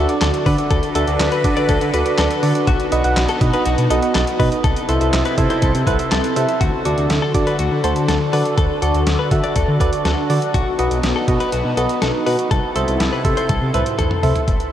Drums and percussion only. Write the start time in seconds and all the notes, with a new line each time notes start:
0.09 closed hi-hat
0.21 snare, clap, closed hi-hat
0.34 closed hi-hat
0.46 kick, open hi-hat
0.58 closed hi-hat
0.71 kick, closed hi-hat
0.83 closed hi-hat
0.95 closed hi-hat
1.07 closed hi-hat
1.20 snare, clap, closed hi-hat
1.32 closed hi-hat
1.44 kick, closed hi-hat
1.57 closed hi-hat
1.69 kick, closed hi-hat
1.81 closed hi-hat
1.94 closed hi-hat
2.06 closed hi-hat
2.18 snare, clap, closed hi-hat
2.31 closed hi-hat
2.43 open hi-hat
2.55 closed hi-hat
2.67 kick, closed hi-hat
2.80 closed hi-hat
2.92 closed hi-hat
3.04 closed hi-hat
3.16 snare, clap, closed hi-hat
3.29 closed hi-hat
3.41 kick, closed hi-hat
3.53 closed hi-hat
3.65 closed hi-hat
3.78 closed hi-hat
3.90 closed hi-hat
4.02 closed hi-hat
4.15 snare, clap, closed hi-hat
4.27 closed hi-hat
4.40 kick, open hi-hat
4.52 closed hi-hat
4.64 kick, closed hi-hat
4.76 closed hi-hat
4.89 closed hi-hat
5.01 closed hi-hat
5.13 snare, clap, closed hi-hat
5.25 closed hi-hat
5.38 kick, closed hi-hat
5.50 closed hi-hat
5.62 kick, closed hi-hat
5.75 closed hi-hat
5.87 kick, closed hi-hat
5.99 closed hi-hat
6.12 snare, clap, closed hi-hat
6.24 closed hi-hat
6.36 closed hi-hat
6.49 closed hi-hat
6.61 kick, closed hi-hat
6.85 closed hi-hat
6.98 closed hi-hat
7.10 snare, closed hi-hat
7.35 kick, closed hi-hat
7.47 closed hi-hat
7.59 closed hi-hat
7.84 closed hi-hat
7.96 closed hi-hat
8.08 snare, closed hi-hat
8.33 open hi-hat
8.45 closed hi-hat
8.58 kick, closed hi-hat
8.82 closed hi-hat
8.95 closed hi-hat
9.07 snare, closed hi-hat
9.31 kick, closed hi-hat
9.44 closed hi-hat
9.56 kick, closed hi-hat
9.80 kick, closed hi-hat
9.93 closed hi-hat
10.05 snare, closed hi-hat
10.30 open hi-hat
10.42 closed hi-hat
10.54 kick, closed hi-hat
10.79 closed hi-hat
10.91 closed hi-hat
11.03 snare, closed hi-hat
11.28 kick, closed hi-hat
11.40 closed hi-hat
11.52 closed hi-hat
11.77 closed hi-hat
11.89 closed hi-hat
12.02 snare, closed hi-hat
12.27 open hi-hat
12.39 closed hi-hat
12.51 kick, closed hi-hat
12.76 closed hi-hat
12.88 closed hi-hat
13.00 snare, closed hi-hat
13.25 kick, closed hi-hat
13.37 closed hi-hat
13.49 kick, closed hi-hat, high tom
13.74 closed hi-hat, mid tom
13.86 closed hi-hat
13.99 closed hi-hat, mid tom
14.11 mid tom
14.23 floor tom, open hi-hat
14.36 closed hi-hat, floor tom
14.48 kick, closed hi-hat
14.60 closed hi-hat